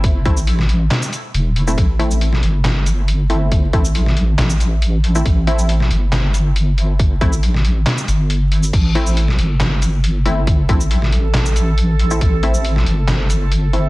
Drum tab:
CC |----------------|----------------|----------------|----------------|
HH |x-x-x-x-x-x-x-x-|x-x-x-x-x-x-x-x-|x-x-x-x-x-x-x-x-|x-x-x-x-x-x-x-x-|
SH |---x-----xx----x|---x------x-----|---x-----xx----x|---x------x-----|
CP |--------x-------|--------x-------|--------x-------|--------x-------|
SD |-----o--o-------|-----o--o-------|-----o--o-------|-----o--o-------|
BD |o-o-------------|o---------------|o-o-------------|o---------------|

CC |----------------|x---------------|----------------|----------------|
HH |x-x-x-x-x-x-x-x-|x-x-x-x-x-x-x-x-|x-x-x-x-x-x-x-x-|x-x-x-x-x-x-x-x-|
SH |---x-----xx----x|---x------x-----|---x-----xx----x|---x------x-----|
CP |--------x-------|--------x-------|--------x-------|--------x-------|
SD |-----o--o-------|-----o--o-------|-----o--o-------|-----o--o-------|
BD |o-o-------------|o---------------|o-o-------------|o---------------|